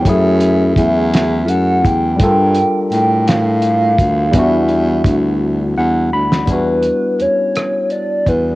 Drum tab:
HH |x-x-x-x-x-x-|x-x-x-x-x-x-|x-x-x-------|x-x-x-x-x-x-|
SD |------o-----|------o-----|-----------o|------r-----|
BD |o---o-----o-|o---------o-|o---o-------|o---------o-|